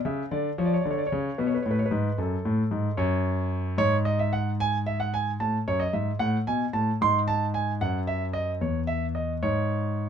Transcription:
0.05 C#3 E5
0.31 D3 D5
0.58 F3 C#5
0.65 D5
0.74 C#5
0.81 D5
0.85 D3
0.91 C#5
0.98 D5
1.07 C#5
1.12 C#3
1.38 B2 B4
1.47 C#5
1.54 B4
1.62 A2 C#5
1.71 B4
1.79 C#5
1.86 B4
1.91 G#2
2.18 F#2 A4
2.45 A2
2.71 G#2
2.97 F#2 C#5
3.78 G#2 C#5
4.05 D#5
4.19 E5
4.33 F#5
4.60 G#5
4.86 E5
5.00 F#5
5.14 G#5
5.40 A2 A5
5.68 F#2 C#5
5.80 D#5
5.93 G#2 E5
6.19 A2 F#5
6.47 B2 G#5
6.73 A2 A5
7.01 G#2 C6
7.28 A5
7.54 G#5
7.81 F#2 F#5
8.07 E5
8.33 D#5
8.61 E2 C#5
8.87 E5
9.15 D#5
9.43 G#2 C#5

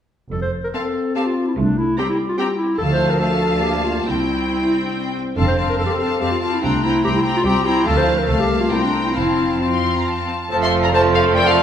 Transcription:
0.31 F1 F2 A4
0.42 C5
0.64 A#4
0.74 C4 A4 F5 A5
1.15 C4 G4 F5 A5
1.26 F4
1.48 E4
1.57 C2 A3 D4
1.78 E4
1.98 G3 C4 G4 G5 A#5
2.09 E4
2.29 F4
2.38 C4 G4 G5 A#5
2.58 E4
2.78 D2 F3 A3 A4 F5 A5
2.90 C5
3.11 A#4
3.20 A3 A4 F5 A5
3.62 A3 A#3 G4
3.84 F4
4.06 C2 C4 E4 G5
4.50 C4
4.62 E4
4.82 D4
4.92 C4
5.36 F1 F2 C4 D4 A4 F5 A5
5.48 C5
5.57 C4 F5 A5
5.70 A#4
5.78 F2 C4 A4 F5 A5
5.86 G4
5.93 A4
5.99 C4 F5 A5
6.20 F2 C4 G4 F5 A5
6.31 F4
6.42 C4 F5 A5
6.53 E4
6.62 C2 A3 C4 D4 G5 A#5
6.83 C4 E4 G5 A#5
7.03 C2 C4 G4 G5 A#5
7.16 E4
7.23 C4 G5 A#5
7.37 F4
7.45 C2 G3 C4 G4 G5 A#5
7.65 C4 E4 G5 A#5
7.85 D2 F3 A3 A4 F5 A5
7.98 C5
8.19 A#4
8.27 C2 A3 A4 F5 A5
8.40 G4
8.49 A#3
8.61 F4
8.70 C2 C4 E4 G5 A#5
8.82 D4
9.04 E4
9.13 F1 F2 C4 E4 F5 A5
9.60 C4 F4 F5 A5
9.72 C6
9.95 A#5
10.06 A5
10.49 F1 F2 F3 A3 C4 A4 C5 A5
10.61 E5 C6
10.83 D5 A#5
10.92 F3 A3 C4 A4 C5 A5
11.14 A4 F5
11.34 A3 A#4 C5 D5 G5
11.45 A4 F5

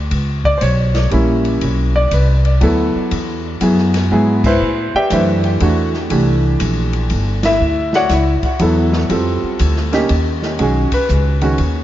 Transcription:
0.11 C#2, ride
0.44 D5, kick
0.58 B1 C5, hi-hat pedal, ride
0.62 C#5
0.95 snare, ride
1.11 A#1 G3 A#3 C#4 E4, ride
1.45 ride
1.61 B1, ride
1.96 D5
2.11 C2 B4, hi-hat pedal, ride
2.45 ride
2.61 D2 F#3 B3 E4 A4, ride
2.95 muted upright bass stroke
3.11 E2, ride
3.61 F#2 F#3 B3 E4 G#4, hi-hat pedal, ride
3.78 snare
3.94 snare, ride
4.11 G#2 F#3 B3 E4 G#4
4.44 E4 B4 C5 E5, kick, crash
4.61 A2
4.94 G4 D5 E5 G5, muted upright bass stroke
5.10 F#2 E3 A3 D4 E4 G4 B4 C5 E5, hi-hat pedal, ride
5.44 ride
5.60 E2 E3 A3 D4 F#4, ride
5.94 snare
6.10 C2 E3 A3 D4 G4, ride
6.60 A#1, hi-hat pedal, ride
6.93 ride
7.10 G1, ride
7.43 E4 E5, snare, ride
7.60 D2
7.93 F#4 C#5 D5 F#5, snare
8.09 C#2 E4 E5, snare, hi-hat pedal, ride
8.43 kick, ride
8.59 E2 F#3 B3 E4 A4, ride
8.93 snare
9.10 F2 G3 C4 F4 A4, ride
9.43 muted upright bass stroke
9.59 D2, hi-hat pedal, ride
9.76 snare
9.92 A#3 C#4 D#4 G4, snare, ride
10.09 D#2, ride
10.42 snare
10.59 B1 D#3 G#3 C#4 F#4 G#4, ride
10.92 B4, muted upright bass stroke, kick, ride
11.09 C#2, hi-hat pedal
11.41 D#3 G#3 C#4 F#4, ride
11.58 D#2, ride

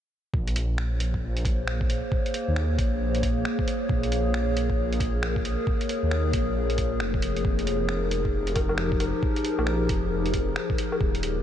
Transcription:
0.33 A#1 A#3 G#4 C5 C#5, kick
0.47 closed hi-hat
0.56 closed hi-hat
0.78 finger snap
1.00 closed hi-hat
1.14 kick
1.23 A#1
1.37 closed hi-hat
1.45 kick, closed hi-hat
1.67 finger snap
1.81 kick
1.90 closed hi-hat
2.12 kick
2.26 closed hi-hat
2.34 closed hi-hat
2.48 D#2
2.56 finger snap
2.79 A#1, kick, closed hi-hat
3.15 closed hi-hat
3.23 kick, closed hi-hat
3.45 finger snap
3.59 kick
3.68 closed hi-hat
3.89 A#1 A#4, kick
4.03 closed hi-hat
4.12 closed hi-hat
4.34 finger snap
4.57 closed hi-hat
4.70 kick
4.78 A#1
4.93 closed hi-hat
5.00 kick, closed hi-hat
5.23 finger snap
5.36 kick
5.45 closed hi-hat
5.67 kick
5.81 closed hi-hat
5.89 closed hi-hat
6.03 D#2
6.11 finger snap
6.33 A#1, kick, closed hi-hat
6.70 closed hi-hat
6.78 kick, closed hi-hat
7.00 F1, finger snap
7.14 kick
7.22 closed hi-hat
7.36 closed hi-hat
7.45 F1 F3 D#4 G4 A#4, kick
7.59 closed hi-hat
7.67 closed hi-hat
7.89 finger snap
8.11 closed hi-hat
8.25 kick
8.34 F1
8.47 closed hi-hat
8.56 kick, closed hi-hat, low woodblock
8.69 low woodblock
8.78 finger snap
8.92 kick
9.00 closed hi-hat, low woodblock
9.23 kick
9.36 closed hi-hat
9.45 closed hi-hat
9.58 A#1, low woodblock
9.67 finger snap
9.89 F1, kick, closed hi-hat
10.26 closed hi-hat
10.34 kick, closed hi-hat
10.56 finger snap
10.70 kick
10.78 closed hi-hat
10.92 low woodblock
11.00 D#1 D#3 D#4 G4 C#5, kick
11.15 closed hi-hat
11.23 closed hi-hat

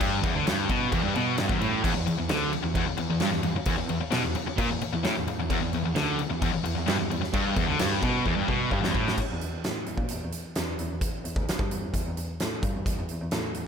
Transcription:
0.00 G2, kick, crash
0.23 E2, kick, crash
0.35 D2 D3
0.46 G2, snare, crash
0.69 B2, kick, crash
0.91 E2, kick, crash
1.03 G2
1.14 B2, crash
1.36 G2, snare, crash
1.48 E2, kick
1.59 A2, crash
1.82 E2, kick, crash
1.94 E2
2.06 E2, crash
2.17 E2
2.29 D2 D3, snare, crash
2.53 E2, muted distorted electric guitar stroke, crash
2.63 E2
2.75 E2, kick, crash
2.87 E2, muted distorted electric guitar stroke
2.97 E2, crash
3.10 E2
3.20 G2, snare, crash
3.32 E2, snare
3.43 E2, crash
3.55 E2, muted distorted electric guitar stroke
3.65 E2, kick, crash
3.78 E2
3.88 E2, crash
4.00 E2, muted distorted electric guitar stroke
4.11 B2, snare, crash
4.22 E2
4.35 E2, muted distorted electric guitar stroke, crash
4.46 E2, muted distorted electric guitar stroke
4.58 A#2, kick, crash
4.69 E2
4.81 E2, muted distorted electric guitar stroke, crash
4.93 E2
5.03 A2, snare, crash
5.15 E2, snare
5.27 E2, muted distorted electric guitar stroke, crash
5.38 E2
5.50 E2, kick, crash
5.62 E2
5.72 E2, crash
5.85 E2
5.96 D2 D3, snare, crash
6.19 E2, muted distorted electric guitar stroke, crash
6.30 E2
6.42 E2, kick, crash
6.53 E2, muted distorted electric guitar stroke
6.64 E2, crash
6.75 E2
6.86 G2, snare, crash
6.99 E2
7.10 E2, crash
7.21 muted distorted electric guitar stroke, snare
7.26 E2
7.33 G2, kick, crash
7.56 E2, kick, crash
7.67 D3
7.71 D2
7.79 G2, snare, crash
7.83 G2
8.02 B2, kick, crash
8.25 E2, kick
8.36 G2
8.47 B2, kick
8.71 G2, kick
8.83 E2, snare
8.95 A2, kick
9.08 snare
9.18 E2, kick, crash
9.32 E2
9.41 E2, closed hi-hat
9.54 E2
9.64 A2, snare, closed hi-hat
9.86 E2, closed hi-hat
9.97 A#2, kick
10.08 E2, closed hi-hat
10.24 E2
10.32 E2, closed hi-hat
10.46 E2
10.55 E2, snare, closed hi-hat
10.69 E2
10.79 E2, closed hi-hat
10.92 E2
11.01 E2, kick, closed hi-hat
11.14 E2
11.25 E2, closed hi-hat
11.36 D2, kick
11.48 E2, snare, closed hi-hat
11.59 G2, kick
11.71 E2, closed hi-hat
11.84 E2
11.93 E2, kick, closed hi-hat
12.07 E2
12.17 E2, closed hi-hat
12.40 A2, snare, closed hi-hat
12.63 G2, kick, closed hi-hat
12.75 E2
12.86 E2, kick, closed hi-hat
12.99 E2
13.09 E2, closed hi-hat
13.21 E2
13.31 A2, snare, closed hi-hat
13.54 E2, closed hi-hat

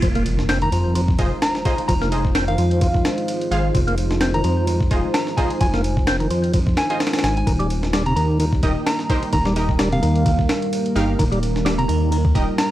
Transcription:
0.02 F1 F3 G#3 D#4 F4 C5, kick, ride, impact
0.15 A#3, ride
0.26 ride
0.39 snare
0.49 C4, snare, ride
0.62 D#3 A#5, ride
0.72 F2 F3 A#5, ride
0.95 F3, ride
1.08 kick
1.19 F1 F4 G#4 C5 D#5, kick, ride
1.42 A#5, snare, ride
1.55 snare
1.65 F4 G#4 C5 D#5, kick, ride
1.78 ride
1.88 F1 F3 A#5, kick, ride
2.02 A#3, snare
2.12 F4 G#4 C5 D#5, ride
2.25 kick
2.35 C4, snare, ride
2.48 D#3 F5, ride
2.58 F2 F3, ride
2.71 ride
2.81 F3, kick, ride
2.94 kick
3.05 snare, ride
3.18 ride
3.28 ride
3.41 ride
3.51 G#1 F4 G#4 C5 F5, ride
3.74 F1 F3, kick, ride
3.87 A#3, ride
3.98 ride
4.11 snare
4.21 C4, snare, ride
4.34 D#3 A#5, ride
4.44 F2 F3 A#5, ride
4.67 F3, ride
4.81 kick
4.91 F1 F4 G#4 C5 D#5, kick, ride
5.14 A#5, snare, ride
5.27 snare
5.37 F4 G#4 C5 D#5 G#5, kick, ride
5.50 ride
5.61 F1 F3 G#5, kick, ride
5.74 A#3, snare
5.84 ride
5.97 kick
6.07 C4, snare, ride
6.20 D#3, ride
6.30 F2 F3, ride
6.44 ride
6.54 F3, kick, ride
6.67 kick
6.77 G#5, snare, ride
6.90 F4 G#4 C5 D#5 G#5, ride
7.00 snare, ride
7.07 snare, ride
7.13 snare, ride
7.19 snare, ride
7.23 G#1 G#5, snare, ride
7.37 G#5, ride
7.47 D#1 D#3 G3 A#3 A#4, kick, ride
7.59 G3, ride
7.70 ride
7.83 snare
7.93 G3, snare, ride
8.06 C3 A#5, ride
8.16 D#2 D#3 A#5, ride
8.40 D#3, ride
8.53 kick
8.63 D#1 D#4 G4 A#4 D#5, kick, ride
8.86 A#5, snare, ride
8.99 snare
9.10 D#4 G4 A#4 C5, kick, ride
9.23 ride
9.33 D#1 D#3 A#5, kick, ride
9.45 G3, snare
9.56 D#4 G4 A#4 D#5, ride
9.69 kick
9.79 G3, snare, ride
9.92 C3 F5, ride
10.02 D#2 D#3, ride
10.16 ride
10.26 D#3, kick, ride
10.39 kick
10.49 snare, ride
10.62 ride
10.73 ride
10.86 ride
10.95 G1 D#4 G4 A#4 F5, ride
11.19 D#1 D#3 F4, kick, ride
11.32 G3, ride
11.43 ride
11.56 snare
11.65 G3, snare, ride
11.78 C3 A#5, ride
11.88 D#2 D#3 A#5, ride
12.11 D#3, ride
12.25 kick
12.35 D#1 D#4 G4 A#4 D#5, kick, ride
12.58 A#5, snare, ride

